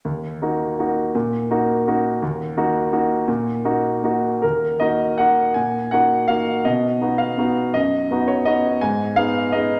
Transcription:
\new Staff \with { instrumentName = "Grand piano" } { \time 3/4 \key ees \minor \tempo 4 = 166 << { r2. | r2. | r2. | r2. |
bes'4 ees''4 ges''4 | aes''4 ges''4 f''4 | dis''4. f''4. | dis''4. des''8 dis''4 |
aes''4 f''4 ees''4 | } \\ { ees,4 <bes ees' ges'>4 <bes ees' ges'>4 | bes,4 <bes ees' ges'>4 <bes ees' ges'>4 | ees,4 <bes ees' ges'>4 <bes ees' ges'>4 | bes,4 <bes ees' ges'>4 <bes ees' ges'>4 |
ees,4 <bes ees' ges'>4 <bes ees' ges'>4 | bes,4 <bes ees' ges'>4 <bes ees' ges'>4 | b,4 <b dis' fis'>4 <b dis' fis'>4 | fis,4 <b dis' fis'>4 <b dis' fis'>4 |
aes,4 <ces' ees' aes'>4 <ces' ees' aes'>4 | } >> }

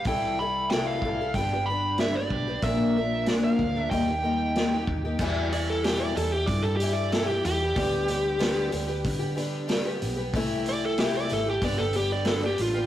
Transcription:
<<
  \new Staff \with { instrumentName = "Lead electric guitar" } { \time 4/4 \key g \mixolydian \tempo 4 = 93 g''8 b''8 g''16 f''8. g''8 b''8 e''16 d''8. | e''4 d''16 f''8. g''4. r8 | r8 d''16 a'16 g'16 d''16 a'16 g'16 d''16 a'16 g'16 d''16 a'16 g'16 g'8~ | g'4. r2 r8 |
r8 d''16 a'16 g'16 d''16 a'16 g'16 d''16 a'16 g'16 d''16 a'16 g'16 f'8 | }
  \new Staff \with { instrumentName = "Twelve-string acoustic guitar" } { \time 4/4 \key g \mixolydian <c e g e' a'>8 <e g e' a'>8 <c e g e' a'>8 <e g e' a'>16 <g e' a'>16 <g, d g b d' g'>16 <g b d' g'>16 <g b d' g'>8 <g, d g b d' g'>16 <g b d' g'>8 <g b d' g'>16 | <bes, d f bes d' bes'>8 <f bes d' bes'>8 <bes, d f bes d' bes'>8 <f bes d' bes'>16 <f bes d' bes'>16 <ees g bes ees' g'>16 <bes ees' g'>16 <g bes ees' g'>8 <ees g bes ees' g'>16 <bes ees' g'>8 <bes ees' g'>16 | <e, b, e g e' g'>8 <e g e' g'>8 <e, b, e g e' g'>8 <e g e' g'>16 <e g e' g'>8 <e g e' g'>16 <e g e' g'>8 <e, b, e g e' g'>16 <e g e' g'>8 <e g e' g'>16 | <d g b g'>8 <d g b g'>8 <d g b g'>8 <d g b g'>16 <g b g'>8 <g b g'>16 <d g b g'>8 <d g b g'>16 <g b g'>8 <g b g'>16 |
<c e a e' g'>8 <e a e' g'>8 <c e a e' g'>8 <e a e' g'>16 <a e' g'>16 <g, d g b d' g'>16 <g b d' g'>16 <g b d' g'>8 <g, d g b d' g'>16 <g b d' g'>8 <g b d' g'>16 | }
  \new Staff \with { instrumentName = "Fingered electric bass" } { \clef bass \time 4/4 \key g \mixolydian c,4. c,8 g,,4. b,,8 | bes,,4. d,8 ees,4. ees,8 | e,4. e,8 g,4. e,8 | d,4. d,8 d4. b,,8 |
c,4. aes,,8 g,,4. a,,8 | }
  \new DrumStaff \with { instrumentName = "Drums" } \drummode { \time 4/4 <hho bd>4 <hho sn>8 bd8 <hho bd>4 <hho sn>8 bd8 | <hho bd>4 <hho sn>8 bd8 <hho bd>4 <hho sn>8 bd8 | <cymc bd>8 hho8 <hho sn>8 hho8 <hho bd>8 hho8 <hho sn>8 hho8 | <hho bd>8 hho8 <hho sn>8 hho8 <hho bd>8 hho8 <hho sn>8 hho8 |
<hho bd>8 hho8 <hho sn>8 hho8 <hho bd>8 hho8 <hho sn>8 hho8 | }
>>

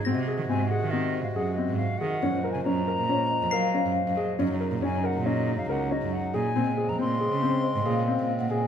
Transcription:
<<
  \new Staff \with { instrumentName = "Glockenspiel" } { \time 5/4 \key aes \mixolydian \tempo 4 = 138 <aes''' bes''' c''''>2.~ <aes''' bes''' c''''>8 r4. | r2. c''''2~ | c''''8 r1 r8 | r1 r4 | }
  \new Staff \with { instrumentName = "Flute" } { \time 5/4 \key aes \mixolydian r4 aes''8 ges''8 ees''8. f''16 ges''8 ees''8 f''8 ges''8~ | ges''8. aes''16 bes''2. r4 | r4 aes''8 ges''8 ees''8. f''16 ges''8 ees''8 ges''8 aes''8~ | aes''8. bes''16 c'''2. r4 | }
  \new Staff \with { instrumentName = "Vibraphone" } { \time 5/4 \key aes \mixolydian r1 r4 | r2 des''8 ees''8 f''4. ees''8~ | ees''8. r1 r16 | r2 c''8 ees''8 f''4~ f''16 ges''16 aes''8 | }
  \new Staff \with { instrumentName = "Grand piano" } { \time 5/4 \key aes \mixolydian c'8 aes'8 c'8 aes'8 c'4 aes'8 c'4 aes'8 | des'8 bes'8 des'8 bes'8 des'4 bes'8 des'4 aes'8 | des'8 bes'8 des'8 bes'8 des'4 bes'8 des'4 aes'8 | c'8 aes'8 c'8 aes'8 c'4 aes'8 c'4 aes'8 | }
  \new Staff \with { instrumentName = "Harmonium" } { \clef bass \time 5/4 \key aes \mixolydian << { <c ges'>1~ <c ges'>4 | <bes, f>1~ <bes, f>4 | <des ees'>1~ <des ees'>4 | <des c'>1~ <des c'>4 | } \\ { aes1~ aes4~ | aes1~ aes4 | ges1~ ges4 | aes1~ aes4 | } >> }
  \new Staff \with { instrumentName = "Cello" } { \clef bass \time 5/4 \key aes \mixolydian aes,16 c16 r16 ees16 aes,8 r16 ees4 aes,16 ges,8 r16 aes,8. ees16 r16 | ges,16 ges,16 r16 des16 ges,8. bes,8 r8 f,16 ges8 r16 ges,16 r16 ges,16 ges16 r16 | ges,16 ges,16 r16 bes,16 ges,8 r16 bes,4 ges,16 des,8 r16 ges,8. bes,16 r16 | bes,16 bes,16 r16 f,16 bes,8. des8 r8 aes,16 bes,8 r16 bes,16 r16 bes,16 bes,16 r16 | }
>>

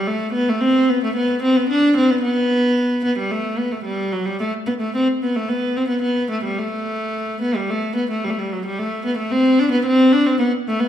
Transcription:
\new Staff \with { instrumentName = "Viola da gamba" } { \time 2/4 \key a \dorian \tempo 4 = 110 a8 b16 a16 c'8 b16 a16 | b8 c'16 b16 d'8 c'16 b16 | b4. b16 g16 | a8 b16 a16 g8 fis16 g16 |
a8 b16 a16 c'8 b16 a16 | b8 c'16 b16 b8 a16 g16 | a4. b16 g16 | a8 b16 a16 g32 a32 g16 fis16 g16 |
a8 b16 a16 c'8 d'16 b16 | c'8 d'16 c'16 b8 a16 b16 | }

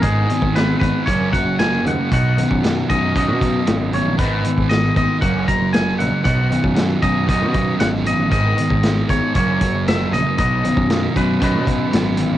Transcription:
<<
  \new Staff \with { instrumentName = "Clean electric guitar" } { \time 4/4 \key b \major \tempo 4 = 116 gis'4 b'8 b'8 cis''8 fis''8 gis''8 fis''8 | fis''4. dis''8 dis''4. cis''8 | b'4 dis''8 dis''8 fis''8 ais''8 gis''8 fis''8 | fis''4. dis''8 dis''4 fis''8 dis''8 |
dis''4. cis''8 cis''4 e''8 dis''8 | dis''4. b'8 b'2 | }
  \new Staff \with { instrumentName = "Overdriven electric guitar" } { \time 4/4 \key b \major <dis b dis'>8 <dis b>8 <dis b>8 <dis b>8 <fis ais cis'>8 <fis ais>8 <fis ais>8 <fis ais>8 | <fis b dis'>8 <fis b>8 <fis b>8 <fis b>8 <fis b dis'>8 <fis b>8 <fis b>8 <fis b>8 | <dis b dis'>8 <dis b>8 <dis b>8 <dis b>8 <fis ais cis'>8 <fis ais>8 <fis ais>8 <fis ais>8 | <fis b dis'>8 <fis b>8 <fis b>8 <fis b>8 <fis b dis'>8 <fis b>8 <fis b>8 <fis b>8 |
<dis b dis'>8 <dis b>8 <dis b>8 <dis b>8 <fis ais cis'>8 <fis ais>8 <fis ais>8 <fis ais>8 | <fis b dis'>8 <fis b>8 <fis b>8 <fis b>8 <fis b dis'>8 <fis b>8 <fis b>8 <fis b>8 | }
  \new Staff \with { instrumentName = "Distorted electric guitar" } { \clef bass \time 4/4 \key b \major gis,8 dis8 gis8 dis'8 fis,8 fis8 ais8 cis8 | b,8 dis8 fis8 dis'8 cis'8 fis8 cis'8 dis8 | gis,8 dis8 gis8 dis'8 fis,8 fis8 ais8 cis8 | b,8 dis8 fis8 dis'8 cis'8 fis8 cis'8 dis8 |
gis,8 dis8 gis8 dis'8 fis,8 fis8 ais8 cis8 | b,8 dis8 fis8 dis'8 cis'8 fis8 cis'8 dis8 | }
  \new Staff \with { instrumentName = "Picked electric bass" } { \clef bass \time 4/4 \key b \major gis,,8 r16 gis,,8. gis,,16 r16 fis,,16 fis,,16 r16 fis,,8. dis,16 r16 | b,,8. fis,8. fis,8. b,8. gis,,8. ais,,16 | gis,,8 r16 gis,,8. gis,,16 r16 fis,,16 fis,,16 r16 fis,,8. ais,,16 r16 | b,,8. fis,8. fis,8. b,8. gis,,8. a,,16 |
gis,,8 r16 gis,,8. gis,,16 r16 fis,,16 fis,,16 r16 fis,,8. ais,,16 r16 | b,,8. fis,8. fis,8. b,8. gis,,8. a,,16 | }
  \new DrumStaff \with { instrumentName = "Drums" } \drummode { \time 4/4 <hh bd>8 hh16 bd16 <hh sn>8 <hh bd>8 <hh bd>8 <hh bd>8 <hh sn>8 hh8 | <hh bd>8 hh16 bd16 <hh sn>8 <hh bd>8 <hh bd>8 <hh bd>8 <hh sn>8 hh8 | <hh bd>8 hh16 bd16 <hh sn>8 <hh bd>8 <hh bd>8 <hh bd>8 <hh sn>8 hh8 | <hh bd>8 hh16 bd16 <hh sn>8 <hh bd>8 <hh bd>8 <hh bd>8 <hh sn>8 hh8 |
<hh bd>8 hh16 bd16 <hh sn>8 <hh bd>8 <hh bd>8 <hh bd>8 <hh sn>8 hh8 | <hh bd>8 hh16 bd16 <hh sn>8 <hh bd>8 <hh bd>8 <hh bd>8 <hh sn>8 hh8 | }
>>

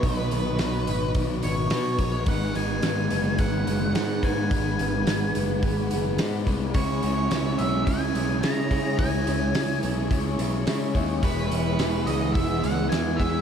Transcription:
<<
  \new Staff \with { instrumentName = "Ambient pad" } { \time 4/4 \key cis \minor \tempo 4 = 107 << { cis'''1 | b''1~ | b''1 | dis'''1 |
cis'''1 | e'''1 | } \\ { <b' dis''>1 | <gis' fis''>1~ | <gis' fis''>1 | <cis'' e''>1~ |
<cis'' e''>1 | <gis' fis''>1 | } >> }
  \new Staff \with { instrumentName = "Lead electric guitar" } { \time 4/4 \key cis \minor b'2 r8 cis''4. | fis''8 gis''4. fis''4 fis''8 gis''8~ | gis''4. r2 r8 | cis''4. e''8 gis''4 ais''4 |
gis''4. r2 r8 | b'4. dis''8 e''8 fis''8 gis''8 e''8 | }
  \new Staff \with { instrumentName = "Overdriven electric guitar" } { \time 4/4 \key cis \minor <b, dis fis b dis' b'>8 <fis b dis' b'>8 <fis b dis' b'>8 <fis b dis' b'>8 <b, dis fis b dis' b'>8 <fis b dis' b'>8 <fis b dis' b'>8 <fis b dis' b'>8 | <gis, dis gis b dis' b'>8 <gis b dis' b'>8 <gis b dis' b'>8 <gis b dis' b'>8 <gis, dis gis b dis' b'>8 <gis b dis' b'>8 <gis b dis' b'>8 <gis b dis' b'>8 | <gis, dis gis b dis' b'>8 <gis b dis' b'>8 <gis b dis' b'>8 <gis b dis' b'>8 <gis, dis gis b dis' b'>8 <gis b dis' b'>8 <gis b dis' b'>8 <gis b dis' b'>8 | <cis gis cis' e' gis'>8 <cis' e' gis'>8 <gis cis' e' gis'>8 <cis' e' gis'>8 <cis gis cis' e' gis'>8 <cis' e' gis'>8 <gis cis' e' gis'>8 <cis' e' gis'>8 |
<cis gis cis' e' gis'>8 <cis' e' gis'>8 <gis cis' e' gis'>8 <cis' e' gis'>8 <cis gis cis' e' gis'>8 <cis' e' gis'>8 <gis cis' e' gis'>8 <cis' e' gis'>8 | <e, e gis b e' gis'>8 <gis b e' gis'>8 <gis b e' gis'>8 <gis b e' gis'>8 <e, e gis b e' gis'>8 <gis b e' gis'>8 <gis b e' gis'>8 <gis b e' gis'>8 | }
  \new Staff \with { instrumentName = "Overdriven electric guitar" } { \clef bass \time 4/4 \key cis \minor <b, dis fis b dis'>1 | <gis, dis gis b dis'>1~ | <gis, dis gis b dis'>1 | <cis gis cis' e'>1~ |
<cis gis cis' e'>1 | <e gis b e'>1 | }
  \new Staff \with { instrumentName = "Picked electric bass" } { \clef bass \time 4/4 \key cis \minor b,,8 b,,8 b,,8 gis,,8 b,,8 gis,,8 b,8 ais,,8 | gis,,8 gis,,8 gis,,8 fis,,8 gis,,8 fis,,8 gis,8 gis,8 | gis,,8 gis,,8 gis,,8 fis,,8 gis,,8 fis,,8 gis,8 c,8 | cis,8 cis,8 cis,8 b,,8 cis,8 b,,8 cis8 cis8 |
cis,8 cis,8 cis,8 b,,8 cis,8 b,,8 cis8 dis,8 | e,,8 e,,8 e,,8 cis,8 e,,8 cis,8 e,8 e,8 | }
  \new DrumStaff \with { instrumentName = "Drums" } \drummode { \time 4/4 <hho bd>8 hho8 <hho sn>8 hho8 <hho bd>8 hho8 <hho sn>8 <hho bd>8 | <hho bd>8 hho8 <hho sn>8 hho8 <hho bd>8 hho8 <hho sn>8 <hho bd>8 | <hho bd>8 hho8 <hho sn>8 hho8 <hho bd>8 hho8 <hho sn>8 <hho bd>8 | <hho bd>8 hho8 <hho sn>8 hho8 <hho bd>8 hho8 <hho sn>8 <hho bd>8 |
<hho bd>8 hho8 <hho sn>8 hho8 <hho bd>8 hho8 <hho sn>8 <hho bd>8 | <hho bd>8 hho8 <hho sn>8 hho8 <hho bd>8 hho8 <hho sn>8 <hho bd>8 | }
>>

